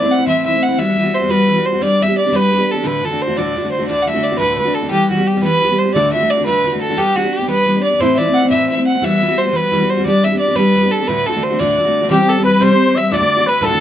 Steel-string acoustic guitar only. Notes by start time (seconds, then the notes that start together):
0.02 A3 C4 E4
0.19 A3 C4 E4
0.26 A2 E3 A3 C4 E4
0.45 E3 A3 C4 E4
0.53 A3 C4 E4
0.68 A3 C4 E4
0.77 E3 G3 B3 F#4
0.96 E3 G3 B3 F#4
1.03 G3 B3 F#4
1.20 G3 B3 F#4
1.28 E3 G3 B3 F#4
1.47 E3 G3 B3 F#4
1.56 G3 B3 F#4
1.73 G3 B3 F#4
1.81 G3 B3 D4 G4
2.00 G3 B3 D4 G4
2.08 B3 D4 G4
2.25 B3 D4 G4
2.32 G3 B3 D4 G4
2.51 G3 B3 D4 G4
2.59 B3 D4 G4
2.74 B3 D4 G4
2.83 D2 A2 D3 A3 D4 F#4
3.02 D3 A3 D4 F#4
3.10 D3 A3 D4 F#4
3.27 D3 A3 D4 F#4
3.36 D2 A2 D3 A3 D4 F#4
3.55 D3 A3 D4 F#4
3.62 D3 A3 D4 F#4
3.78 D3 A3 D4 F#4
3.88 D2 A2 D3 A3 D4 F#4
4.06 D3 A3 D4 F#4
4.14 D3 A3 D4 F#4
4.31 D3 A3 D4 F#4
4.38 D2 A2 D3 A3 D4 F#4
4.57 D3 A3 D4 F#4
4.65 D3 A3 D4 F#4
4.81 D3 A3 D4 F#4
4.89 E3 G3 B3 G4
5.09 E3 G3 B3 G4
5.17 G3 B3 G4
5.34 G3 B3 G4
5.42 E3 G3 B3 G4
5.61 E3 G3 B3 G4
5.69 G3 B3 G4
5.85 G3 B3 G4
5.94 D2 A2 D3 A3 D4 F#4
6.13 D3 A3 D4 F#4
6.20 D3 A3 D4 F#4
6.37 D3 A3 D4 F#4
6.45 D2 A2 D3 A3 D4 F#4
6.63 D3 A3 D4 F#4
6.72 D3 A3 D4 F#4
6.89 D3 A3 D4 F#4
6.96 G3 B3 D4 G4
7.14 G3 B3 D4 G4
7.24 B3 D4 G4
7.39 B3 D4 G4
7.48 G3 B3 D4 G4
7.66 G3 B3 D4 G4
7.75 B3 D4 G4
7.90 B3 D4 G4
8.00 A2 E3 A3 C4 E4
8.17 E3 A3 C4 E4
8.26 A3 C4 E4
8.41 A3 C4 E4
8.51 A2 E3 A3 C4 E4
8.68 E3 A3 C4 E4
8.76 A3 C4 E4
8.93 A3 C4 E4
9.02 E3 G3 B3 F#4
9.20 E3 G3 B3 F#4
9.28 G3 B3 F#4
9.45 G3 B3 F#4
9.53 E3 G3 B3 F#4
9.72 E3 G3 B3 F#4
9.80 G3 B3 F#4
9.97 G3 B3 F#4
10.05 G3 B3 D4 G4
10.23 G3 B3 D4 G4
10.32 B3 D4 G4
10.48 B3 D4 G4
10.56 G3 B3 D4 G4
10.75 G3 B3 D4 G4
10.83 B3 D4 G4
11.00 B3 D4 G4
11.07 D2 A2 D3 A3 D4 F#4
11.26 D3 A3 D4 F#4
11.34 D3 A3 D4 F#4
11.50 D3 A3 D4 F#4
11.59 D2 A2 D3 A3 D4 F#4
11.77 D3 A3 D4 F#4
11.85 D3 A3 D4 F#4
12.01 D3 A3 D4 F#4
12.09 C3 E3 G3 C4 G4
12.18 G3 C4 G4
12.36 G3 C4 G4
12.44 E3 G3 C4 G4
12.60 C3 E3 G3 C4 G4
12.69 G3 C4 G4
12.87 G3 C4 G4
12.94 E3 G3 C4 G4
13.11 D2 A2 D3 A3 D4 F#4
13.20 D3 A3 D4 F#4
13.37 D3 A3 D4 F#4
13.45 D3 A3 F#4
13.61 D2 A2 D3 A3 D4 F#4
13.70 D3 A3 D4 F#4